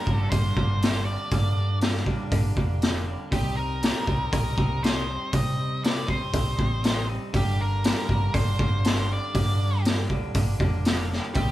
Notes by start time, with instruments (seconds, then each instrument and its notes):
Already playing: lead electric guitar A#4
0.05 picked electric bass G1, clean electric guitar G2 D3 G3 A#3 D4, kick
0.17 lead electric guitar A4
0.30 picked electric bass G1, clean electric guitar D3 G3 A#3 D4, lead electric guitar C5, kick, open hi-hat
0.56 picked electric bass G1, clean electric guitar G2 D3 G3 A#3 D4, kick
0.82 clean electric guitar D3 G3 A#3 D4, snare, open hi-hat
1.05 clean electric guitar G3 A#3 D4, lead electric guitar D5
1.31 clean electric guitar G2 D3 G3 A#3 D4, picked electric bass G2, kick, open hi-hat
1.56 clean electric guitar G3 A#3 D4
1.81 clean electric guitar D3 G3 A#3 D4, snare, open hi-hat
1.96 snare
2.06 picked electric bass D2, clean electric guitar G2 D3 G3 A#3 D4, kick
2.30 picked electric bass G1, clean electric guitar D3 G3 A#3 D4, kick, open hi-hat
2.55 picked electric bass F1, clean electric guitar G2 D3 G3 A#3 D4, kick
2.82 clean electric guitar D3 G3 A#3 D4, snare, open hi-hat
3.06 clean electric guitar G3 A#3 D4
3.31 picked electric bass C2, clean electric guitar C3 G3 C4 D#4, lead electric guitar G4, kick, open hi-hat
3.56 clean electric guitar G3 C4 D#4, lead electric guitar A#4
3.81 clean electric guitar C3 G3 C4 D#4, snare, open hi-hat
4.05 picked electric bass C2, clean electric guitar C3 G3 C4 D#4, kick
4.31 picked electric bass C2, clean electric guitar C3 G3 C4 D#4, lead electric guitar A#4, kick, open hi-hat
4.56 picked electric bass C2, clean electric guitar C3 G3 C4 D#4, kick
4.81 clean electric guitar C3 G3 C4 D#4, lead electric guitar C5, open hi-hat
4.85 snare
5.06 clean electric guitar G3 C4 D#4
5.32 clean electric guitar C3 G3 C4 D#4, picked electric bass C3, lead electric guitar D#5, kick, open hi-hat
5.57 clean electric guitar G3 C4 D#4
5.82 clean electric guitar C3 G3 C4 D#4, lead electric guitar D5, snare, open hi-hat
6.06 picked electric bass G2, clean electric guitar C3 G3 C4 D#4, lead electric guitar C5, kick
6.32 picked electric bass C2, clean electric guitar C3 G3 C4 D#4, kick, open hi-hat
6.56 picked electric bass A1, clean electric guitar C3 G3 C4 D#4, kick
6.82 clean electric guitar C3 G3 C4 D#4, snare, open hi-hat
7.07 clean electric guitar G3 C4 D#4
7.32 picked electric bass G1, clean electric guitar G2 D3 G3 A#3 D4, lead electric guitar G4, kick, open hi-hat
7.58 clean electric guitar G3 A#3 D4, lead electric guitar A#4
7.82 clean electric guitar D3 G3 A#3 D4, snare, open hi-hat
7.87 lead electric guitar A#4
8.09 picked electric bass G1, clean electric guitar G2 D3 G3 A#3 D4, kick
8.33 picked electric bass G1, clean electric guitar D3 G3 A#3 D4, lead electric guitar C5, kick, open hi-hat
8.58 picked electric bass G1, clean electric guitar G2 D3 G3 A#3 D4, kick
8.83 clean electric guitar D3 G3 A#3 D4, snare, open hi-hat
9.08 clean electric guitar G3 A#3 D4
9.12 lead electric guitar D5
9.34 clean electric guitar G2 D3 G3 A#3 D4, picked electric bass G2, kick, open hi-hat
9.59 clean electric guitar G3 A#3 D4
9.83 clean electric guitar D3 G3 A#3 D4, snare, open hi-hat
10.08 picked electric bass D2, clean electric guitar G2 D3 G3 A#3 D4, kick
10.34 picked electric bass G1, clean electric guitar D3 G3 A#3 D4, kick, open hi-hat
10.60 picked electric bass F1, clean electric guitar G2 D3 G3 A#3 D4, kick
10.85 clean electric guitar D3 G3 A#3 D4, snare, open hi-hat
11.11 clean electric guitar G3 A#3 D4, snare
11.34 picked electric bass C2, clean electric guitar C3 G3 C4 D#4, lead electric guitar G4, kick, open hi-hat